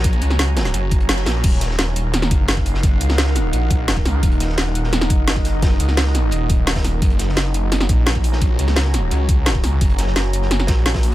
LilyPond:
<<
  \new Staff \with { instrumentName = "Ambient pad" } { \time 4/4 \key ees \minor \tempo 4 = 172 << { <ges' des'' bes''>1 | <ees' bes' ges''>1~ | <ees' bes' ges''>1~ | <ees' bes' ges''>1~ |
<ees' bes' ges''>1 | <ges' des'' bes''>1~ | <ges' des'' bes''>1~ | <ges' des'' bes''>1 | } \\ { aes''1 | f''1~ | f''1 | ees''1~ |
ees''1 | aes''1~ | aes''1~ | aes''1 | } >> }
  \new Staff \with { instrumentName = "Detuned saw bass" } { \clef bass \time 4/4 \key ees \minor bes,,8 des,4. ges,,4 ges,,8 bes,,8 | ees,,2~ ees,,8 ges,,4 ges,,8~ | ges,,8 des,4. bes,,4. des,8 | ees,,2~ ees,,8 ges,,4 ges,,8~ |
ges,,8 des,4. ees,,2 | ges,,2~ ges,,8 bes,,4 bes,,8~ | bes,,8 des,4. des,4. des,8 | ges,,2~ ges,,8 bes,,4 bes,,8 | }
  \new DrumStaff \with { instrumentName = "Drums" } \drummode { \time 4/4 <hh bd>16 hh16 hh16 sn16 <hh sn>8 <hh sn>16 <hh sn>16 hh8 <hh bd>16 hh16 <hh sn>16 <hh sn>16 <hh hho sn>8 | <cymc hh bd>16 hh16 <hh sn>16 sn16 <hh sn>8 hh8 <hh sn>16 sn16 <hh bd>8 <hh sn>16 bd16 <hh hho>16 sn16 | <hh bd>8 hh16 sn16 <hh sn>16 sn16 <hh sn>8 hh8 <hh bd>8 <hh sn>16 bd16 <hh hho sn>8 | <hh bd>16 hh16 <hh sn>16 sn16 <hh sn>8 hh16 sn16 <hh sn>16 sn16 <hh bd>8 <hh sn>16 bd16 <hh hho sn>8 |
<hh bd sn>8 hh16 sn16 <hh sn>16 sn16 <hh sn>8 hh8 <hh bd>8 <hh sn>16 <hh bd sn>16 <hh hho sn>8 | <hh bd>16 hh16 <hh sn>16 sn16 <hh sn>8 hh8 <hh sn>16 sn16 <hh bd>8 <hh sn>16 bd16 <hh hho>16 sn16 | <hh bd>8 hh16 sn16 <hh sn>16 sn16 <hh sn>8 hh8 <hh bd>8 <hh sn>16 bd16 <hh hho sn>8 | <hh bd>16 hh16 <hh sn>16 sn16 <hh sn>8 hh16 sn16 <hh sn>16 sn16 <hh bd sn>8 <hh sn>16 <hh bd sn>16 hho8 | }
>>